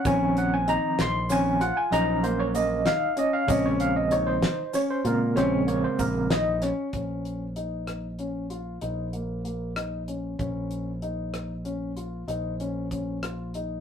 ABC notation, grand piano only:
X:1
M:11/8
L:1/8
Q:1/4=96
K:Bbm
V:1 name="Grand piano"
D2 E2 D F E B, B, E D | D2 E2 D F D B, B, E D | D2 E2 D F E B, B, E D | D2 E2 D F E D D F E |]